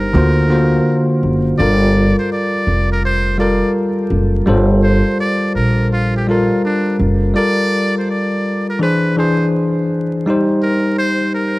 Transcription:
Already playing: G3 D#4 G4 A#4 C5
0.13 D2 D3 A#3 F4 F#4 C5
0.49 D3 A#3 F4 F#4 C5
1.23 F#1
1.58 G1 G3 F4 A4 A#4 D5
2.19 C5
2.32 D5
2.67 F1
2.92 A#4
3.05 C5
3.38 G3 F4 A4 A#4 D5
4.11 F#1
4.46 G1 G3 F4 A4 C5
4.83 C5
5.20 D5
5.55 A#1 A#4
5.93 F4
6.16 G4
6.27 G3 F4 A4 A#4
6.65 D4
6.99 F#1
7.34 G3 F4 A4 A#4 D5
7.98 C5
8.10 D5
8.70 A#4
8.79 E3 D4 G#4 B4 C5
9.17 E3 D4 G#4 C5
10.26 G3 D#4 G4 C5
10.62 A#4
10.98 C5
11.35 A#4

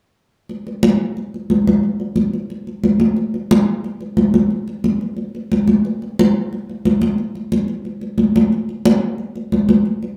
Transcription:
0.49 high conga
0.67 high conga
0.83 high conga
1.17 high conga
1.34 high conga
1.50 high conga
1.67 high conga
1.83 high conga
2.00 high conga
2.16 high conga
2.33 high conga
2.50 high conga
2.67 high conga
2.84 high conga
3.00 high conga
3.16 high conga
3.34 high conga
3.51 high conga
3.84 high conga
4.01 high conga
4.17 high conga
4.34 high conga
4.51 high conga
4.68 high conga
4.84 high conga
5.01 high conga
5.17 high conga
5.35 high conga
5.52 high conga
5.67 high conga
5.85 high conga
6.02 high conga
6.19 high conga
6.53 high conga
6.70 high conga
6.85 high conga
7.01 high conga
7.18 high conga
7.35 high conga
7.52 high conga
7.68 high conga
7.85 high conga
8.01 high conga
8.18 high conga
8.36 high conga
8.52 high conga
8.69 high conga
8.85 high conga
9.18 high conga
9.36 high conga
9.52 high conga
9.69 high conga
9.85 high conga
10.03 high conga

